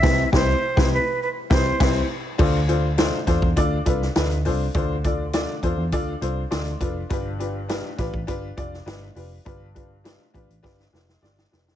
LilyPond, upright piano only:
<<
  \new Staff \with { instrumentName = "Upright piano" } { \time 4/4 \key d \dorian \tempo 4 = 102 <c c' e' g' b' c''>8 <c' e' g' b'>8 r16 <c' e' g' b' c''>8 r8. <c' e' g' b' c''>8 <c' e' g' b' c''>8 r8 | <d' f' a' c''>16 r16 <d' f' a' c''>16 r16 <d' f' a' c''>16 r16 <d' f' a' c''>16 r16 <d' f' a' d''>16 r16 <d' f' a' b'>16 r16 <d' f' a' b'>16 r16 <d' f' a' c''>16 r16 | <d' f' a' c''>16 r16 <d' f' a' d''>16 r16 <d' f' a' d''>16 r16 <d' f' a' c''>16 r16 <d' f' a' d''>16 r16 <d' f' a' c''>16 r16 <d' f' a' d''>16 r16 <d' f' a' b'>16 r16 | <d' f' g' b'>16 r16 <d' f' g' b'>16 r16 <d' f' g' b'>16 r16 <d' f' g' b'>16 r16 <d' f' g' b'>16 r16 <d' f' g' d''>16 r16 <d' f' g' b'>16 r16 <d' f' g' b'>16 r16 |
<d' f' g' b'>16 r16 <d' f' g' b'>16 r16 <d' f' g' b'>16 r16 <d' f' g' b'>16 r16 <d' f' g' b'>16 r16 <d' f' g' b'>16 r16 <d' f' g' d''>16 r16 <d' f' g' b'>16 r16 | }
  \new Staff \with { instrumentName = "Upright piano" } { \clef bass \time 4/4 \key d \dorian r1 | d4. r2 r8 | d4. r4. c'''4 | g,4. r2 r8 |
g,4. r2 r8 | }
>>